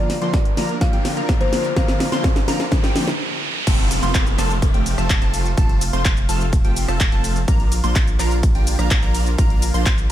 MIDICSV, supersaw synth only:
0, 0, Header, 1, 2, 480
1, 0, Start_track
1, 0, Key_signature, -1, "major"
1, 0, Tempo, 476190
1, 1779, Time_signature, 4, 2, 24, 8
1, 10198, End_track
2, 0, Start_track
2, 0, Title_t, "Supersaw synth"
2, 0, Program_c, 0, 81
2, 0, Note_on_c, 0, 53, 93
2, 0, Note_on_c, 0, 58, 83
2, 0, Note_on_c, 0, 62, 83
2, 0, Note_on_c, 0, 65, 88
2, 0, Note_on_c, 0, 70, 102
2, 127, Note_off_c, 0, 53, 0
2, 127, Note_off_c, 0, 58, 0
2, 127, Note_off_c, 0, 62, 0
2, 127, Note_off_c, 0, 65, 0
2, 127, Note_off_c, 0, 70, 0
2, 218, Note_on_c, 0, 53, 98
2, 219, Note_on_c, 0, 58, 88
2, 219, Note_on_c, 0, 62, 88
2, 219, Note_on_c, 0, 65, 90
2, 219, Note_on_c, 0, 72, 109
2, 387, Note_off_c, 0, 53, 0
2, 387, Note_off_c, 0, 58, 0
2, 387, Note_off_c, 0, 62, 0
2, 387, Note_off_c, 0, 65, 0
2, 387, Note_off_c, 0, 72, 0
2, 578, Note_on_c, 0, 53, 99
2, 578, Note_on_c, 0, 58, 91
2, 578, Note_on_c, 0, 62, 88
2, 579, Note_on_c, 0, 65, 87
2, 579, Note_on_c, 0, 70, 107
2, 747, Note_off_c, 0, 53, 0
2, 747, Note_off_c, 0, 58, 0
2, 747, Note_off_c, 0, 62, 0
2, 747, Note_off_c, 0, 65, 0
2, 747, Note_off_c, 0, 70, 0
2, 938, Note_on_c, 0, 53, 78
2, 938, Note_on_c, 0, 58, 69
2, 938, Note_on_c, 0, 62, 67
2, 938, Note_on_c, 0, 65, 66
2, 938, Note_on_c, 0, 67, 87
2, 1150, Note_off_c, 0, 53, 0
2, 1150, Note_off_c, 0, 58, 0
2, 1150, Note_off_c, 0, 62, 0
2, 1150, Note_off_c, 0, 65, 0
2, 1150, Note_off_c, 0, 67, 0
2, 1177, Note_on_c, 0, 58, 76
2, 1177, Note_on_c, 0, 62, 78
2, 1178, Note_on_c, 0, 53, 84
2, 1178, Note_on_c, 0, 65, 73
2, 1178, Note_on_c, 0, 70, 91
2, 1346, Note_off_c, 0, 53, 0
2, 1346, Note_off_c, 0, 58, 0
2, 1346, Note_off_c, 0, 62, 0
2, 1346, Note_off_c, 0, 65, 0
2, 1346, Note_off_c, 0, 70, 0
2, 1418, Note_on_c, 0, 53, 84
2, 1418, Note_on_c, 0, 58, 73
2, 1418, Note_on_c, 0, 62, 73
2, 1418, Note_on_c, 0, 65, 77
2, 1418, Note_on_c, 0, 70, 89
2, 1687, Note_off_c, 0, 53, 0
2, 1687, Note_off_c, 0, 58, 0
2, 1687, Note_off_c, 0, 62, 0
2, 1687, Note_off_c, 0, 65, 0
2, 1687, Note_off_c, 0, 70, 0
2, 1778, Note_on_c, 0, 53, 91
2, 1778, Note_on_c, 0, 58, 86
2, 1778, Note_on_c, 0, 62, 81
2, 1779, Note_on_c, 0, 65, 85
2, 1779, Note_on_c, 0, 70, 103
2, 2047, Note_off_c, 0, 53, 0
2, 2047, Note_off_c, 0, 58, 0
2, 2047, Note_off_c, 0, 62, 0
2, 2047, Note_off_c, 0, 65, 0
2, 2047, Note_off_c, 0, 70, 0
2, 2139, Note_on_c, 0, 53, 95
2, 2139, Note_on_c, 0, 58, 92
2, 2139, Note_on_c, 0, 62, 89
2, 2139, Note_on_c, 0, 65, 93
2, 2139, Note_on_c, 0, 72, 111
2, 2307, Note_off_c, 0, 53, 0
2, 2307, Note_off_c, 0, 58, 0
2, 2307, Note_off_c, 0, 62, 0
2, 2307, Note_off_c, 0, 65, 0
2, 2307, Note_off_c, 0, 72, 0
2, 2498, Note_on_c, 0, 65, 92
2, 2499, Note_on_c, 0, 53, 102
2, 2499, Note_on_c, 0, 58, 94
2, 2499, Note_on_c, 0, 62, 92
2, 2499, Note_on_c, 0, 70, 108
2, 2667, Note_off_c, 0, 53, 0
2, 2667, Note_off_c, 0, 58, 0
2, 2667, Note_off_c, 0, 62, 0
2, 2667, Note_off_c, 0, 65, 0
2, 2667, Note_off_c, 0, 70, 0
2, 2859, Note_on_c, 0, 53, 77
2, 2859, Note_on_c, 0, 58, 70
2, 2859, Note_on_c, 0, 62, 71
2, 2859, Note_on_c, 0, 65, 67
2, 2859, Note_on_c, 0, 67, 86
2, 3070, Note_off_c, 0, 53, 0
2, 3070, Note_off_c, 0, 58, 0
2, 3070, Note_off_c, 0, 62, 0
2, 3070, Note_off_c, 0, 65, 0
2, 3070, Note_off_c, 0, 67, 0
2, 3699, Note_on_c, 0, 53, 92
2, 3699, Note_on_c, 0, 57, 87
2, 3699, Note_on_c, 0, 60, 84
2, 3699, Note_on_c, 0, 65, 87
2, 3699, Note_on_c, 0, 69, 103
2, 3967, Note_off_c, 0, 53, 0
2, 3967, Note_off_c, 0, 60, 0
2, 3967, Note_off_c, 0, 65, 0
2, 3967, Note_off_c, 0, 69, 0
2, 3968, Note_off_c, 0, 57, 0
2, 4059, Note_on_c, 0, 53, 96
2, 4059, Note_on_c, 0, 57, 92
2, 4059, Note_on_c, 0, 60, 92
2, 4059, Note_on_c, 0, 65, 90
2, 4059, Note_on_c, 0, 72, 110
2, 4227, Note_off_c, 0, 53, 0
2, 4227, Note_off_c, 0, 57, 0
2, 4227, Note_off_c, 0, 60, 0
2, 4227, Note_off_c, 0, 65, 0
2, 4227, Note_off_c, 0, 72, 0
2, 4419, Note_on_c, 0, 53, 97
2, 4419, Note_on_c, 0, 57, 90
2, 4419, Note_on_c, 0, 60, 92
2, 4419, Note_on_c, 0, 65, 90
2, 4419, Note_on_c, 0, 69, 109
2, 4587, Note_off_c, 0, 53, 0
2, 4587, Note_off_c, 0, 57, 0
2, 4587, Note_off_c, 0, 60, 0
2, 4587, Note_off_c, 0, 65, 0
2, 4587, Note_off_c, 0, 69, 0
2, 4778, Note_on_c, 0, 53, 76
2, 4778, Note_on_c, 0, 60, 71
2, 4778, Note_on_c, 0, 65, 71
2, 4778, Note_on_c, 0, 67, 84
2, 4779, Note_on_c, 0, 57, 68
2, 4990, Note_off_c, 0, 53, 0
2, 4990, Note_off_c, 0, 57, 0
2, 4990, Note_off_c, 0, 60, 0
2, 4990, Note_off_c, 0, 65, 0
2, 4990, Note_off_c, 0, 67, 0
2, 5018, Note_on_c, 0, 57, 74
2, 5019, Note_on_c, 0, 53, 83
2, 5019, Note_on_c, 0, 60, 76
2, 5019, Note_on_c, 0, 65, 77
2, 5019, Note_on_c, 0, 69, 91
2, 5187, Note_off_c, 0, 53, 0
2, 5187, Note_off_c, 0, 57, 0
2, 5187, Note_off_c, 0, 60, 0
2, 5187, Note_off_c, 0, 65, 0
2, 5187, Note_off_c, 0, 69, 0
2, 5258, Note_on_c, 0, 60, 75
2, 5258, Note_on_c, 0, 69, 90
2, 5259, Note_on_c, 0, 53, 79
2, 5259, Note_on_c, 0, 57, 70
2, 5259, Note_on_c, 0, 65, 73
2, 5527, Note_off_c, 0, 57, 0
2, 5527, Note_off_c, 0, 60, 0
2, 5527, Note_off_c, 0, 65, 0
2, 5527, Note_off_c, 0, 69, 0
2, 5528, Note_off_c, 0, 53, 0
2, 5618, Note_on_c, 0, 53, 95
2, 5618, Note_on_c, 0, 65, 86
2, 5618, Note_on_c, 0, 69, 106
2, 5619, Note_on_c, 0, 57, 86
2, 5619, Note_on_c, 0, 60, 83
2, 5887, Note_off_c, 0, 53, 0
2, 5887, Note_off_c, 0, 57, 0
2, 5887, Note_off_c, 0, 60, 0
2, 5887, Note_off_c, 0, 65, 0
2, 5887, Note_off_c, 0, 69, 0
2, 5979, Note_on_c, 0, 53, 101
2, 5979, Note_on_c, 0, 57, 93
2, 5979, Note_on_c, 0, 60, 92
2, 5979, Note_on_c, 0, 65, 89
2, 5979, Note_on_c, 0, 72, 107
2, 6147, Note_off_c, 0, 53, 0
2, 6147, Note_off_c, 0, 57, 0
2, 6147, Note_off_c, 0, 60, 0
2, 6147, Note_off_c, 0, 65, 0
2, 6147, Note_off_c, 0, 72, 0
2, 6339, Note_on_c, 0, 53, 99
2, 6339, Note_on_c, 0, 57, 93
2, 6339, Note_on_c, 0, 60, 94
2, 6339, Note_on_c, 0, 65, 91
2, 6339, Note_on_c, 0, 69, 110
2, 6507, Note_off_c, 0, 53, 0
2, 6507, Note_off_c, 0, 57, 0
2, 6507, Note_off_c, 0, 60, 0
2, 6507, Note_off_c, 0, 65, 0
2, 6507, Note_off_c, 0, 69, 0
2, 6700, Note_on_c, 0, 53, 73
2, 6700, Note_on_c, 0, 57, 72
2, 6700, Note_on_c, 0, 60, 73
2, 6700, Note_on_c, 0, 65, 70
2, 6700, Note_on_c, 0, 67, 83
2, 6911, Note_off_c, 0, 53, 0
2, 6911, Note_off_c, 0, 57, 0
2, 6911, Note_off_c, 0, 60, 0
2, 6911, Note_off_c, 0, 65, 0
2, 6911, Note_off_c, 0, 67, 0
2, 6939, Note_on_c, 0, 53, 79
2, 6939, Note_on_c, 0, 57, 77
2, 6939, Note_on_c, 0, 60, 77
2, 6939, Note_on_c, 0, 65, 73
2, 6939, Note_on_c, 0, 69, 88
2, 7107, Note_off_c, 0, 53, 0
2, 7107, Note_off_c, 0, 57, 0
2, 7107, Note_off_c, 0, 60, 0
2, 7107, Note_off_c, 0, 65, 0
2, 7107, Note_off_c, 0, 69, 0
2, 7178, Note_on_c, 0, 57, 74
2, 7179, Note_on_c, 0, 53, 81
2, 7179, Note_on_c, 0, 60, 76
2, 7179, Note_on_c, 0, 65, 75
2, 7179, Note_on_c, 0, 69, 88
2, 7447, Note_off_c, 0, 53, 0
2, 7447, Note_off_c, 0, 57, 0
2, 7447, Note_off_c, 0, 65, 0
2, 7448, Note_off_c, 0, 60, 0
2, 7448, Note_off_c, 0, 69, 0
2, 7539, Note_on_c, 0, 53, 97
2, 7539, Note_on_c, 0, 58, 89
2, 7539, Note_on_c, 0, 62, 89
2, 7539, Note_on_c, 0, 65, 82
2, 7539, Note_on_c, 0, 70, 104
2, 7808, Note_off_c, 0, 53, 0
2, 7808, Note_off_c, 0, 58, 0
2, 7808, Note_off_c, 0, 62, 0
2, 7808, Note_off_c, 0, 65, 0
2, 7808, Note_off_c, 0, 70, 0
2, 7900, Note_on_c, 0, 53, 97
2, 7900, Note_on_c, 0, 58, 96
2, 7900, Note_on_c, 0, 62, 90
2, 7900, Note_on_c, 0, 65, 93
2, 7900, Note_on_c, 0, 72, 108
2, 8067, Note_off_c, 0, 58, 0
2, 8067, Note_off_c, 0, 65, 0
2, 8068, Note_off_c, 0, 53, 0
2, 8068, Note_off_c, 0, 62, 0
2, 8068, Note_off_c, 0, 72, 0
2, 8260, Note_on_c, 0, 53, 97
2, 8260, Note_on_c, 0, 58, 89
2, 8260, Note_on_c, 0, 62, 88
2, 8260, Note_on_c, 0, 65, 91
2, 8260, Note_on_c, 0, 70, 108
2, 8427, Note_off_c, 0, 53, 0
2, 8427, Note_off_c, 0, 58, 0
2, 8427, Note_off_c, 0, 62, 0
2, 8427, Note_off_c, 0, 65, 0
2, 8427, Note_off_c, 0, 70, 0
2, 8619, Note_on_c, 0, 53, 77
2, 8619, Note_on_c, 0, 62, 72
2, 8620, Note_on_c, 0, 58, 69
2, 8620, Note_on_c, 0, 65, 70
2, 8620, Note_on_c, 0, 67, 83
2, 8831, Note_off_c, 0, 53, 0
2, 8831, Note_off_c, 0, 58, 0
2, 8831, Note_off_c, 0, 62, 0
2, 8831, Note_off_c, 0, 65, 0
2, 8831, Note_off_c, 0, 67, 0
2, 8859, Note_on_c, 0, 58, 77
2, 8859, Note_on_c, 0, 62, 75
2, 8859, Note_on_c, 0, 65, 77
2, 8859, Note_on_c, 0, 70, 89
2, 8860, Note_on_c, 0, 53, 82
2, 9027, Note_off_c, 0, 53, 0
2, 9027, Note_off_c, 0, 58, 0
2, 9027, Note_off_c, 0, 62, 0
2, 9027, Note_off_c, 0, 65, 0
2, 9027, Note_off_c, 0, 70, 0
2, 9099, Note_on_c, 0, 53, 82
2, 9099, Note_on_c, 0, 58, 72
2, 9099, Note_on_c, 0, 70, 88
2, 9100, Note_on_c, 0, 62, 70
2, 9100, Note_on_c, 0, 65, 73
2, 9368, Note_off_c, 0, 53, 0
2, 9368, Note_off_c, 0, 58, 0
2, 9368, Note_off_c, 0, 62, 0
2, 9368, Note_off_c, 0, 65, 0
2, 9368, Note_off_c, 0, 70, 0
2, 9459, Note_on_c, 0, 53, 93
2, 9459, Note_on_c, 0, 58, 89
2, 9459, Note_on_c, 0, 62, 89
2, 9459, Note_on_c, 0, 65, 86
2, 9459, Note_on_c, 0, 70, 101
2, 9727, Note_off_c, 0, 58, 0
2, 9727, Note_off_c, 0, 65, 0
2, 9727, Note_off_c, 0, 70, 0
2, 9728, Note_off_c, 0, 53, 0
2, 9728, Note_off_c, 0, 62, 0
2, 9819, Note_on_c, 0, 53, 104
2, 9819, Note_on_c, 0, 58, 91
2, 9819, Note_on_c, 0, 62, 91
2, 9819, Note_on_c, 0, 65, 93
2, 9819, Note_on_c, 0, 72, 108
2, 9987, Note_off_c, 0, 53, 0
2, 9987, Note_off_c, 0, 58, 0
2, 9987, Note_off_c, 0, 62, 0
2, 9987, Note_off_c, 0, 65, 0
2, 9987, Note_off_c, 0, 72, 0
2, 10198, End_track
0, 0, End_of_file